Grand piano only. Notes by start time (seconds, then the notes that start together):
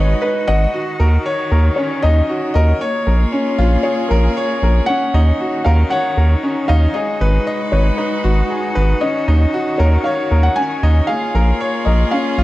Already playing: D#4 F#4 G#4 B4 D#5
0.22 D#4
0.48 F#5
0.73 F#4
1.00 A#4
1.26 C#5
1.52 A#4
1.78 C#4
2.04 D#4
2.29 F#4
2.55 A#4
2.81 C#5
3.07 A#4
3.33 C#4
3.58 F4
3.85 G#4
4.11 A#4
4.37 C#5
4.63 A#4
4.88 C#4
5.14 D#4
5.41 F#4
5.66 A#4
5.92 C#5
6.17 A#4
6.43 C#4
6.69 D#4
6.95 G#4
7.21 B4
7.47 D#5
7.73 B4
7.98 D#4
8.24 F#4
8.50 G#4
8.75 B4
9.01 C#4
9.28 D#4
9.54 F#4
9.80 A#4
10.05 C#5
10.31 A#4
10.57 C#4
10.83 D#4
11.09 G#4
11.35 A#4
11.61 C#5
11.87 A#4
12.12 C#4
12.38 F4